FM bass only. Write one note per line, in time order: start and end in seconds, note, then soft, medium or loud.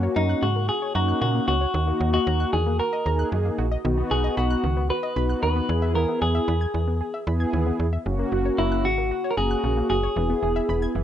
0.16 0.35 F#2 loud
0.42 0.70 G#2 medium
0.95 1.14 F#2 loud
1.22 1.40 A#2 medium
1.48 1.66 C#2 medium
1.74 1.93 D#2 loud
2.01 2.19 D#2 loud
2.27 2.45 D#2 loud
2.53 2.81 E2 medium
3.06 3.24 D#2 medium
3.32 3.51 F#2 medium
3.58 3.77 A#1 medium
3.85 4.03 B1 loud
4.11 4.29 B1 medium
4.37 4.56 B1 loud
4.64 4.91 C#2 medium
5.16 5.35 B1 medium
5.43 5.61 D#2 medium
5.69 6.06 E2 loud
6.22 6.40 E2 medium
6.48 6.66 E2 loud
6.74 7.02 E2 medium
7.27 7.45 E2 loud
7.53 7.72 D#2 medium
7.80 7.98 E2 medium
8.06 8.24 F#1 loud
8.32 8.51 F#1 loud
8.58 8.86 F#1 loud
8.85 9.12 G#1 medium
9.37 9.56 F#1 medium
9.64 9.82 A#1 medium
9.90 10.08 F#1 loud
10.16 10.35 E1 loud
10.43 10.61 E1 medium
10.69 10.87 E1 loud
10.95 11.04 F#1 medium